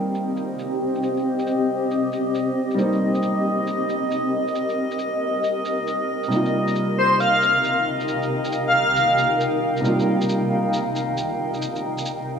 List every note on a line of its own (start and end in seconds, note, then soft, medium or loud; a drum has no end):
0.00 2.73 G3 medium
0.00 2.76 A#3 medium
0.00 2.78 C4 medium
0.00 7.40 C4 medium
0.00 0.13 D#4 medium
0.00 2.80 D#4 medium
0.00 7.08 G4 medium
0.00 3.41 C5 medium
0.00 12.39 D#5 medium
0.00 0.34 F5 medium
0.00 0.54 G5 medium
0.15 shaker soft
0.37 shaker medium
0.59 shaker soft
0.65 7.89 D#5 medium
0.95 shaker soft
1.03 shaker medium
1.17 shaker soft
1.39 shaker soft
1.47 shaker soft
1.91 shaker soft
2.12 shaker medium
2.35 shaker medium
2.71 6.28 G3 medium
2.71 shaker soft
2.77 6.29 A#3 medium
2.77 6.30 C4 medium
2.77 shaker medium
2.82 6.32 D#4 medium
2.93 shaker soft
3.15 shaker soft
3.22 shaker soft
3.27 12.39 A#4 medium
3.67 shaker soft
3.89 shaker medium
4.11 shaker medium
4.48 shaker soft
4.55 shaker medium
4.69 shaker soft
4.91 shaker soft
4.99 shaker soft
5.44 shaker soft
5.65 shaker soft
5.87 shaker soft
6.23 shaker soft
6.28 9.79 C3 medium
6.28 9.81 G3 medium
6.28 9.82 A#3 medium
6.28 shaker soft
6.32 12.39 C3 medium
6.32 9.84 D#4 medium
6.32 9.85 F4 medium
6.46 shaker soft
6.54 12.39 D#4 medium
6.68 shaker soft
6.75 shaker soft
6.96 7.20 C5 medium
6.96 12.39 G5 medium
7.20 7.83 F5 medium
7.20 shaker soft
7.42 12.39 F5 medium
7.42 shaker soft
7.64 shaker soft
8.00 shaker soft
8.08 shaker soft
8.22 shaker soft
8.45 shaker soft
8.52 shaker soft
8.67 9.27 F5 medium
8.96 shaker soft
9.18 shaker soft
9.40 shaker soft
9.77 12.39 C3 medium
9.77 shaker soft
9.82 12.39 G3 medium
9.82 12.39 A#3 medium
9.82 shaker medium
9.86 12.39 D#4 medium
9.86 12.39 F4 medium
9.99 shaker soft
10.21 shaker soft
10.29 shaker soft
10.73 shaker soft
10.96 shaker soft
11.17 shaker soft
11.54 shaker soft
11.62 shaker medium
11.76 shaker soft
11.98 shaker medium
12.05 shaker soft